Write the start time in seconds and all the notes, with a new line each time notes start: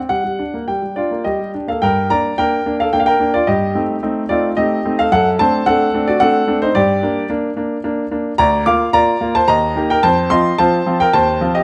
0.09 G3 F#5
0.24 G3
0.39 D4
0.54 A#3
0.68 G3 G5
0.82 G3
0.96 D4 F4 D5
1.11 A#3
1.24 G3 G4 D#5
1.39 G3
1.54 D4
1.68 A#3 A4 F5
1.82 G2 A#4 G5
2.10 A#3 D4 D5 A#5
2.38 A#3 D4 A#4 G5
2.66 A#3 D4
2.80 A4 F5
2.93 A#3 D4 G5
3.00 F5
3.06 A#4 G5
3.20 A#3 D4
3.34 F4 D5
3.47 G2 G4 D#5
3.75 A3 C4 D#4
4.03 A3 C4 D#4
4.29 A3 C4 D#4 F4 D5
4.57 A3 C4 D#4 G4 D#5
4.85 A3 C4 D#4
4.99 A4 F5
5.12 F#2 A4 F#5
5.39 A3 C4 D4 C5 A5
5.66 A3 C4 D4 A4 F#5
5.93 A3 C4 D4
6.08 F#4 D5
6.20 A3 C4 D4 A4 F#5
6.47 A3 C4 D4
6.62 D#4 C5
6.75 G2 G4 D5
7.03 A#3 D4
7.30 A#3 D4
7.56 A#3 D4
7.84 A#3 D4
8.11 A#3 D4
8.38 D2 D5 A#5
8.66 A#3 F4 F5 D6
8.93 A#3 F4 D5 A#5
9.21 A#3 F4
9.35 C5 A5
9.48 D#2 D#5 A#5
9.76 A#3 D#4 G4
9.90 A#4 G5
10.03 F2 C5 A5
10.30 F3 C4 F4 D#5 C6
10.58 F3 C4 F4 C5 A5
10.86 F3 C4 F4
11.00 A#4 G5
11.13 D#2 C5 A5
11.41 F3 C4 F4
11.55 G4 D#5